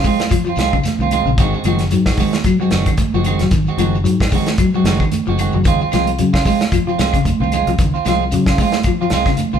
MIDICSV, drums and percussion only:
0, 0, Header, 1, 3, 480
1, 0, Start_track
1, 0, Tempo, 533333
1, 1248, Time_signature, 4, 2, 24, 8
1, 8635, End_track
2, 0, Start_track
2, 0, Title_t, "Shekere"
2, 30, Note_on_c, 9, 82, 65
2, 120, Note_off_c, 9, 82, 0
2, 168, Note_on_c, 9, 82, 27
2, 258, Note_off_c, 9, 82, 0
2, 272, Note_on_c, 9, 82, 82
2, 362, Note_off_c, 9, 82, 0
2, 409, Note_on_c, 9, 82, 29
2, 499, Note_off_c, 9, 82, 0
2, 507, Note_on_c, 9, 82, 64
2, 597, Note_off_c, 9, 82, 0
2, 651, Note_on_c, 9, 82, 26
2, 741, Note_off_c, 9, 82, 0
2, 753, Note_on_c, 9, 82, 85
2, 843, Note_off_c, 9, 82, 0
2, 905, Note_on_c, 9, 82, 28
2, 995, Note_off_c, 9, 82, 0
2, 1007, Note_on_c, 9, 82, 67
2, 1097, Note_off_c, 9, 82, 0
2, 1140, Note_on_c, 9, 82, 27
2, 1230, Note_off_c, 9, 82, 0
2, 1248, Note_on_c, 9, 82, 80
2, 1338, Note_off_c, 9, 82, 0
2, 1381, Note_on_c, 9, 82, 26
2, 1471, Note_off_c, 9, 82, 0
2, 1482, Note_on_c, 9, 82, 62
2, 1572, Note_off_c, 9, 82, 0
2, 1618, Note_on_c, 9, 82, 28
2, 1708, Note_off_c, 9, 82, 0
2, 1728, Note_on_c, 9, 82, 83
2, 1818, Note_off_c, 9, 82, 0
2, 1879, Note_on_c, 9, 82, 27
2, 1969, Note_off_c, 9, 82, 0
2, 1979, Note_on_c, 9, 82, 63
2, 2069, Note_off_c, 9, 82, 0
2, 2109, Note_on_c, 9, 82, 26
2, 2199, Note_off_c, 9, 82, 0
2, 2216, Note_on_c, 9, 82, 82
2, 2306, Note_off_c, 9, 82, 0
2, 2349, Note_on_c, 9, 82, 28
2, 2439, Note_off_c, 9, 82, 0
2, 2449, Note_on_c, 9, 82, 64
2, 2539, Note_off_c, 9, 82, 0
2, 2582, Note_on_c, 9, 82, 28
2, 2672, Note_off_c, 9, 82, 0
2, 2686, Note_on_c, 9, 82, 85
2, 2776, Note_off_c, 9, 82, 0
2, 2830, Note_on_c, 9, 82, 28
2, 2920, Note_off_c, 9, 82, 0
2, 2923, Note_on_c, 9, 82, 65
2, 3013, Note_off_c, 9, 82, 0
2, 3070, Note_on_c, 9, 82, 26
2, 3160, Note_off_c, 9, 82, 0
2, 3170, Note_on_c, 9, 82, 76
2, 3260, Note_off_c, 9, 82, 0
2, 3303, Note_on_c, 9, 82, 27
2, 3393, Note_off_c, 9, 82, 0
2, 3411, Note_on_c, 9, 82, 61
2, 3501, Note_off_c, 9, 82, 0
2, 3554, Note_on_c, 9, 82, 27
2, 3644, Note_off_c, 9, 82, 0
2, 3644, Note_on_c, 9, 82, 83
2, 3734, Note_off_c, 9, 82, 0
2, 3783, Note_on_c, 9, 82, 27
2, 3873, Note_off_c, 9, 82, 0
2, 3876, Note_on_c, 9, 82, 67
2, 3966, Note_off_c, 9, 82, 0
2, 4025, Note_on_c, 9, 82, 27
2, 4115, Note_off_c, 9, 82, 0
2, 4124, Note_on_c, 9, 82, 86
2, 4214, Note_off_c, 9, 82, 0
2, 4267, Note_on_c, 9, 82, 28
2, 4357, Note_off_c, 9, 82, 0
2, 4371, Note_on_c, 9, 82, 68
2, 4461, Note_off_c, 9, 82, 0
2, 4517, Note_on_c, 9, 82, 28
2, 4607, Note_off_c, 9, 82, 0
2, 4612, Note_on_c, 9, 82, 77
2, 4702, Note_off_c, 9, 82, 0
2, 4739, Note_on_c, 9, 82, 27
2, 4829, Note_off_c, 9, 82, 0
2, 4846, Note_on_c, 9, 82, 65
2, 4936, Note_off_c, 9, 82, 0
2, 4971, Note_on_c, 9, 82, 28
2, 5061, Note_off_c, 9, 82, 0
2, 5079, Note_on_c, 9, 82, 80
2, 5169, Note_off_c, 9, 82, 0
2, 5225, Note_on_c, 9, 82, 26
2, 5315, Note_off_c, 9, 82, 0
2, 5327, Note_on_c, 9, 82, 62
2, 5417, Note_off_c, 9, 82, 0
2, 5468, Note_on_c, 9, 82, 29
2, 5558, Note_off_c, 9, 82, 0
2, 5571, Note_on_c, 9, 82, 81
2, 5661, Note_off_c, 9, 82, 0
2, 5712, Note_on_c, 9, 82, 26
2, 5802, Note_off_c, 9, 82, 0
2, 5811, Note_on_c, 9, 82, 66
2, 5901, Note_off_c, 9, 82, 0
2, 5942, Note_on_c, 9, 82, 27
2, 6032, Note_off_c, 9, 82, 0
2, 6061, Note_on_c, 9, 82, 87
2, 6151, Note_off_c, 9, 82, 0
2, 6196, Note_on_c, 9, 82, 27
2, 6286, Note_off_c, 9, 82, 0
2, 6296, Note_on_c, 9, 82, 70
2, 6386, Note_off_c, 9, 82, 0
2, 6426, Note_on_c, 9, 82, 27
2, 6516, Note_off_c, 9, 82, 0
2, 6541, Note_on_c, 9, 82, 79
2, 6631, Note_off_c, 9, 82, 0
2, 6683, Note_on_c, 9, 82, 28
2, 6773, Note_off_c, 9, 82, 0
2, 6775, Note_on_c, 9, 82, 65
2, 6865, Note_off_c, 9, 82, 0
2, 6911, Note_on_c, 9, 82, 28
2, 7001, Note_off_c, 9, 82, 0
2, 7011, Note_on_c, 9, 82, 78
2, 7101, Note_off_c, 9, 82, 0
2, 7156, Note_on_c, 9, 82, 26
2, 7246, Note_off_c, 9, 82, 0
2, 7248, Note_on_c, 9, 82, 61
2, 7338, Note_off_c, 9, 82, 0
2, 7389, Note_on_c, 9, 82, 27
2, 7479, Note_off_c, 9, 82, 0
2, 7484, Note_on_c, 9, 82, 76
2, 7574, Note_off_c, 9, 82, 0
2, 7628, Note_on_c, 9, 82, 27
2, 7718, Note_off_c, 9, 82, 0
2, 7731, Note_on_c, 9, 82, 63
2, 7821, Note_off_c, 9, 82, 0
2, 7864, Note_on_c, 9, 82, 26
2, 7954, Note_off_c, 9, 82, 0
2, 7967, Note_on_c, 9, 82, 79
2, 8057, Note_off_c, 9, 82, 0
2, 8115, Note_on_c, 9, 82, 28
2, 8205, Note_off_c, 9, 82, 0
2, 8214, Note_on_c, 9, 82, 67
2, 8304, Note_off_c, 9, 82, 0
2, 8347, Note_on_c, 9, 82, 26
2, 8437, Note_off_c, 9, 82, 0
2, 8446, Note_on_c, 9, 82, 75
2, 8536, Note_off_c, 9, 82, 0
2, 8579, Note_on_c, 9, 82, 27
2, 8635, Note_off_c, 9, 82, 0
2, 8635, End_track
3, 0, Start_track
3, 0, Title_t, "Drums"
3, 39, Note_on_c, 9, 46, 58
3, 40, Note_on_c, 9, 36, 62
3, 47, Note_on_c, 9, 64, 77
3, 129, Note_off_c, 9, 46, 0
3, 130, Note_off_c, 9, 36, 0
3, 137, Note_off_c, 9, 64, 0
3, 178, Note_on_c, 9, 42, 46
3, 181, Note_on_c, 9, 38, 67
3, 193, Note_on_c, 9, 63, 75
3, 268, Note_off_c, 9, 42, 0
3, 271, Note_off_c, 9, 38, 0
3, 282, Note_on_c, 9, 36, 67
3, 283, Note_off_c, 9, 63, 0
3, 284, Note_on_c, 9, 42, 70
3, 286, Note_on_c, 9, 75, 61
3, 300, Note_on_c, 9, 63, 30
3, 372, Note_off_c, 9, 36, 0
3, 374, Note_off_c, 9, 42, 0
3, 376, Note_off_c, 9, 75, 0
3, 390, Note_off_c, 9, 63, 0
3, 526, Note_on_c, 9, 42, 47
3, 530, Note_on_c, 9, 38, 68
3, 535, Note_on_c, 9, 63, 88
3, 535, Note_on_c, 9, 64, 66
3, 616, Note_off_c, 9, 42, 0
3, 620, Note_off_c, 9, 38, 0
3, 625, Note_off_c, 9, 63, 0
3, 625, Note_off_c, 9, 64, 0
3, 657, Note_on_c, 9, 75, 65
3, 659, Note_on_c, 9, 36, 61
3, 747, Note_off_c, 9, 75, 0
3, 749, Note_off_c, 9, 36, 0
3, 769, Note_on_c, 9, 42, 66
3, 771, Note_on_c, 9, 63, 82
3, 771, Note_on_c, 9, 64, 71
3, 772, Note_on_c, 9, 38, 26
3, 859, Note_off_c, 9, 42, 0
3, 861, Note_off_c, 9, 63, 0
3, 861, Note_off_c, 9, 64, 0
3, 862, Note_off_c, 9, 38, 0
3, 907, Note_on_c, 9, 63, 62
3, 997, Note_off_c, 9, 63, 0
3, 1000, Note_on_c, 9, 42, 49
3, 1004, Note_on_c, 9, 75, 63
3, 1008, Note_on_c, 9, 64, 72
3, 1090, Note_off_c, 9, 42, 0
3, 1094, Note_off_c, 9, 75, 0
3, 1098, Note_off_c, 9, 64, 0
3, 1241, Note_on_c, 9, 36, 86
3, 1242, Note_on_c, 9, 42, 66
3, 1250, Note_on_c, 9, 63, 32
3, 1331, Note_off_c, 9, 36, 0
3, 1332, Note_off_c, 9, 42, 0
3, 1340, Note_off_c, 9, 63, 0
3, 1474, Note_on_c, 9, 42, 49
3, 1488, Note_on_c, 9, 63, 89
3, 1489, Note_on_c, 9, 75, 62
3, 1564, Note_off_c, 9, 42, 0
3, 1578, Note_off_c, 9, 63, 0
3, 1579, Note_off_c, 9, 75, 0
3, 1608, Note_on_c, 9, 42, 46
3, 1612, Note_on_c, 9, 38, 24
3, 1698, Note_off_c, 9, 42, 0
3, 1702, Note_off_c, 9, 38, 0
3, 1717, Note_on_c, 9, 42, 67
3, 1720, Note_on_c, 9, 63, 30
3, 1807, Note_off_c, 9, 42, 0
3, 1810, Note_off_c, 9, 63, 0
3, 1852, Note_on_c, 9, 38, 64
3, 1855, Note_on_c, 9, 36, 65
3, 1856, Note_on_c, 9, 75, 60
3, 1942, Note_off_c, 9, 38, 0
3, 1945, Note_off_c, 9, 36, 0
3, 1946, Note_off_c, 9, 75, 0
3, 1955, Note_on_c, 9, 46, 62
3, 1959, Note_on_c, 9, 36, 61
3, 1963, Note_on_c, 9, 64, 75
3, 2045, Note_off_c, 9, 46, 0
3, 2049, Note_off_c, 9, 36, 0
3, 2053, Note_off_c, 9, 64, 0
3, 2095, Note_on_c, 9, 42, 42
3, 2099, Note_on_c, 9, 38, 59
3, 2100, Note_on_c, 9, 63, 73
3, 2185, Note_off_c, 9, 42, 0
3, 2189, Note_off_c, 9, 38, 0
3, 2190, Note_off_c, 9, 63, 0
3, 2196, Note_on_c, 9, 42, 61
3, 2200, Note_on_c, 9, 36, 65
3, 2210, Note_on_c, 9, 63, 29
3, 2214, Note_on_c, 9, 75, 63
3, 2286, Note_off_c, 9, 42, 0
3, 2290, Note_off_c, 9, 36, 0
3, 2300, Note_off_c, 9, 63, 0
3, 2304, Note_off_c, 9, 75, 0
3, 2435, Note_on_c, 9, 42, 45
3, 2439, Note_on_c, 9, 38, 66
3, 2442, Note_on_c, 9, 63, 87
3, 2442, Note_on_c, 9, 64, 66
3, 2525, Note_off_c, 9, 42, 0
3, 2529, Note_off_c, 9, 38, 0
3, 2532, Note_off_c, 9, 63, 0
3, 2532, Note_off_c, 9, 64, 0
3, 2574, Note_on_c, 9, 42, 47
3, 2576, Note_on_c, 9, 36, 64
3, 2589, Note_on_c, 9, 75, 66
3, 2664, Note_off_c, 9, 42, 0
3, 2666, Note_off_c, 9, 36, 0
3, 2677, Note_on_c, 9, 42, 62
3, 2679, Note_off_c, 9, 75, 0
3, 2681, Note_on_c, 9, 36, 63
3, 2688, Note_on_c, 9, 63, 77
3, 2688, Note_on_c, 9, 64, 66
3, 2767, Note_off_c, 9, 42, 0
3, 2771, Note_off_c, 9, 36, 0
3, 2778, Note_off_c, 9, 63, 0
3, 2778, Note_off_c, 9, 64, 0
3, 2835, Note_on_c, 9, 63, 67
3, 2920, Note_on_c, 9, 42, 46
3, 2925, Note_off_c, 9, 63, 0
3, 2937, Note_on_c, 9, 64, 71
3, 2937, Note_on_c, 9, 75, 62
3, 3010, Note_off_c, 9, 42, 0
3, 3027, Note_off_c, 9, 64, 0
3, 3027, Note_off_c, 9, 75, 0
3, 3053, Note_on_c, 9, 42, 48
3, 3057, Note_on_c, 9, 38, 28
3, 3143, Note_off_c, 9, 42, 0
3, 3147, Note_off_c, 9, 38, 0
3, 3159, Note_on_c, 9, 42, 65
3, 3163, Note_on_c, 9, 36, 89
3, 3179, Note_on_c, 9, 63, 33
3, 3249, Note_off_c, 9, 42, 0
3, 3253, Note_off_c, 9, 36, 0
3, 3269, Note_off_c, 9, 63, 0
3, 3406, Note_on_c, 9, 42, 50
3, 3413, Note_on_c, 9, 63, 84
3, 3413, Note_on_c, 9, 75, 58
3, 3496, Note_off_c, 9, 42, 0
3, 3503, Note_off_c, 9, 63, 0
3, 3503, Note_off_c, 9, 75, 0
3, 3655, Note_on_c, 9, 42, 69
3, 3660, Note_on_c, 9, 63, 32
3, 3745, Note_off_c, 9, 42, 0
3, 3750, Note_off_c, 9, 63, 0
3, 3784, Note_on_c, 9, 36, 60
3, 3792, Note_on_c, 9, 38, 64
3, 3792, Note_on_c, 9, 75, 60
3, 3874, Note_off_c, 9, 36, 0
3, 3882, Note_off_c, 9, 38, 0
3, 3882, Note_off_c, 9, 75, 0
3, 3889, Note_on_c, 9, 36, 66
3, 3895, Note_on_c, 9, 46, 58
3, 3898, Note_on_c, 9, 64, 77
3, 3979, Note_off_c, 9, 36, 0
3, 3985, Note_off_c, 9, 46, 0
3, 3988, Note_off_c, 9, 64, 0
3, 4017, Note_on_c, 9, 42, 48
3, 4021, Note_on_c, 9, 38, 61
3, 4034, Note_on_c, 9, 63, 77
3, 4107, Note_off_c, 9, 42, 0
3, 4111, Note_off_c, 9, 38, 0
3, 4120, Note_on_c, 9, 42, 69
3, 4124, Note_off_c, 9, 63, 0
3, 4124, Note_on_c, 9, 36, 68
3, 4132, Note_on_c, 9, 75, 63
3, 4210, Note_off_c, 9, 42, 0
3, 4214, Note_off_c, 9, 36, 0
3, 4222, Note_off_c, 9, 75, 0
3, 4366, Note_on_c, 9, 42, 51
3, 4370, Note_on_c, 9, 38, 63
3, 4370, Note_on_c, 9, 63, 89
3, 4370, Note_on_c, 9, 64, 68
3, 4456, Note_off_c, 9, 42, 0
3, 4460, Note_off_c, 9, 38, 0
3, 4460, Note_off_c, 9, 63, 0
3, 4460, Note_off_c, 9, 64, 0
3, 4500, Note_on_c, 9, 36, 63
3, 4504, Note_on_c, 9, 75, 65
3, 4590, Note_off_c, 9, 36, 0
3, 4594, Note_off_c, 9, 75, 0
3, 4604, Note_on_c, 9, 42, 65
3, 4607, Note_on_c, 9, 63, 82
3, 4607, Note_on_c, 9, 64, 66
3, 4694, Note_off_c, 9, 42, 0
3, 4697, Note_off_c, 9, 63, 0
3, 4697, Note_off_c, 9, 64, 0
3, 4850, Note_on_c, 9, 42, 51
3, 4855, Note_on_c, 9, 75, 61
3, 4862, Note_on_c, 9, 64, 71
3, 4940, Note_off_c, 9, 42, 0
3, 4945, Note_off_c, 9, 75, 0
3, 4952, Note_off_c, 9, 64, 0
3, 5088, Note_on_c, 9, 36, 88
3, 5089, Note_on_c, 9, 42, 70
3, 5110, Note_on_c, 9, 63, 33
3, 5178, Note_off_c, 9, 36, 0
3, 5179, Note_off_c, 9, 42, 0
3, 5200, Note_off_c, 9, 63, 0
3, 5327, Note_on_c, 9, 75, 62
3, 5336, Note_on_c, 9, 42, 53
3, 5340, Note_on_c, 9, 38, 28
3, 5342, Note_on_c, 9, 63, 86
3, 5417, Note_off_c, 9, 75, 0
3, 5426, Note_off_c, 9, 42, 0
3, 5430, Note_off_c, 9, 38, 0
3, 5432, Note_off_c, 9, 63, 0
3, 5465, Note_on_c, 9, 42, 48
3, 5555, Note_off_c, 9, 42, 0
3, 5567, Note_on_c, 9, 42, 70
3, 5589, Note_on_c, 9, 63, 32
3, 5657, Note_off_c, 9, 42, 0
3, 5679, Note_off_c, 9, 63, 0
3, 5703, Note_on_c, 9, 36, 64
3, 5706, Note_on_c, 9, 75, 57
3, 5713, Note_on_c, 9, 38, 61
3, 5793, Note_off_c, 9, 36, 0
3, 5796, Note_off_c, 9, 75, 0
3, 5803, Note_off_c, 9, 38, 0
3, 5809, Note_on_c, 9, 36, 63
3, 5810, Note_on_c, 9, 46, 63
3, 5816, Note_on_c, 9, 64, 77
3, 5899, Note_off_c, 9, 36, 0
3, 5900, Note_off_c, 9, 46, 0
3, 5906, Note_off_c, 9, 64, 0
3, 5946, Note_on_c, 9, 42, 42
3, 5950, Note_on_c, 9, 38, 65
3, 5955, Note_on_c, 9, 63, 72
3, 6036, Note_off_c, 9, 42, 0
3, 6040, Note_off_c, 9, 38, 0
3, 6045, Note_off_c, 9, 63, 0
3, 6048, Note_on_c, 9, 36, 68
3, 6052, Note_on_c, 9, 42, 60
3, 6052, Note_on_c, 9, 75, 63
3, 6064, Note_on_c, 9, 63, 31
3, 6138, Note_off_c, 9, 36, 0
3, 6142, Note_off_c, 9, 42, 0
3, 6142, Note_off_c, 9, 75, 0
3, 6154, Note_off_c, 9, 63, 0
3, 6290, Note_on_c, 9, 42, 46
3, 6294, Note_on_c, 9, 38, 66
3, 6301, Note_on_c, 9, 63, 86
3, 6301, Note_on_c, 9, 64, 68
3, 6380, Note_off_c, 9, 42, 0
3, 6384, Note_off_c, 9, 38, 0
3, 6391, Note_off_c, 9, 63, 0
3, 6391, Note_off_c, 9, 64, 0
3, 6415, Note_on_c, 9, 75, 65
3, 6422, Note_on_c, 9, 36, 61
3, 6428, Note_on_c, 9, 42, 48
3, 6505, Note_off_c, 9, 75, 0
3, 6512, Note_off_c, 9, 36, 0
3, 6518, Note_off_c, 9, 42, 0
3, 6528, Note_on_c, 9, 36, 58
3, 6529, Note_on_c, 9, 63, 76
3, 6529, Note_on_c, 9, 64, 68
3, 6532, Note_on_c, 9, 42, 64
3, 6618, Note_off_c, 9, 36, 0
3, 6619, Note_off_c, 9, 63, 0
3, 6619, Note_off_c, 9, 64, 0
3, 6622, Note_off_c, 9, 42, 0
3, 6766, Note_on_c, 9, 42, 44
3, 6768, Note_on_c, 9, 75, 59
3, 6776, Note_on_c, 9, 64, 76
3, 6856, Note_off_c, 9, 42, 0
3, 6858, Note_off_c, 9, 75, 0
3, 6866, Note_off_c, 9, 64, 0
3, 6904, Note_on_c, 9, 42, 46
3, 6994, Note_off_c, 9, 42, 0
3, 7006, Note_on_c, 9, 42, 66
3, 7008, Note_on_c, 9, 36, 82
3, 7096, Note_off_c, 9, 42, 0
3, 7098, Note_off_c, 9, 36, 0
3, 7248, Note_on_c, 9, 63, 82
3, 7252, Note_on_c, 9, 75, 59
3, 7255, Note_on_c, 9, 42, 49
3, 7259, Note_on_c, 9, 38, 26
3, 7338, Note_off_c, 9, 63, 0
3, 7342, Note_off_c, 9, 75, 0
3, 7345, Note_off_c, 9, 42, 0
3, 7349, Note_off_c, 9, 38, 0
3, 7488, Note_on_c, 9, 42, 65
3, 7498, Note_on_c, 9, 63, 30
3, 7578, Note_off_c, 9, 42, 0
3, 7588, Note_off_c, 9, 63, 0
3, 7617, Note_on_c, 9, 36, 61
3, 7617, Note_on_c, 9, 38, 60
3, 7626, Note_on_c, 9, 75, 60
3, 7707, Note_off_c, 9, 36, 0
3, 7707, Note_off_c, 9, 38, 0
3, 7716, Note_off_c, 9, 75, 0
3, 7723, Note_on_c, 9, 46, 62
3, 7724, Note_on_c, 9, 36, 65
3, 7730, Note_on_c, 9, 63, 65
3, 7730, Note_on_c, 9, 64, 74
3, 7813, Note_off_c, 9, 46, 0
3, 7814, Note_off_c, 9, 36, 0
3, 7820, Note_off_c, 9, 63, 0
3, 7820, Note_off_c, 9, 64, 0
3, 7848, Note_on_c, 9, 42, 44
3, 7852, Note_on_c, 9, 38, 62
3, 7866, Note_on_c, 9, 63, 77
3, 7938, Note_off_c, 9, 42, 0
3, 7942, Note_off_c, 9, 38, 0
3, 7949, Note_on_c, 9, 42, 64
3, 7956, Note_off_c, 9, 63, 0
3, 7959, Note_on_c, 9, 36, 64
3, 7962, Note_on_c, 9, 63, 30
3, 7966, Note_on_c, 9, 75, 63
3, 8039, Note_off_c, 9, 42, 0
3, 8049, Note_off_c, 9, 36, 0
3, 8052, Note_off_c, 9, 63, 0
3, 8056, Note_off_c, 9, 75, 0
3, 8190, Note_on_c, 9, 42, 47
3, 8193, Note_on_c, 9, 38, 67
3, 8201, Note_on_c, 9, 63, 87
3, 8201, Note_on_c, 9, 64, 66
3, 8280, Note_off_c, 9, 42, 0
3, 8283, Note_off_c, 9, 38, 0
3, 8291, Note_off_c, 9, 63, 0
3, 8291, Note_off_c, 9, 64, 0
3, 8329, Note_on_c, 9, 38, 26
3, 8332, Note_on_c, 9, 36, 63
3, 8338, Note_on_c, 9, 75, 69
3, 8419, Note_off_c, 9, 38, 0
3, 8422, Note_off_c, 9, 36, 0
3, 8428, Note_off_c, 9, 75, 0
3, 8433, Note_on_c, 9, 42, 67
3, 8441, Note_on_c, 9, 63, 79
3, 8441, Note_on_c, 9, 64, 69
3, 8523, Note_off_c, 9, 42, 0
3, 8531, Note_off_c, 9, 63, 0
3, 8531, Note_off_c, 9, 64, 0
3, 8584, Note_on_c, 9, 63, 62
3, 8635, Note_off_c, 9, 63, 0
3, 8635, End_track
0, 0, End_of_file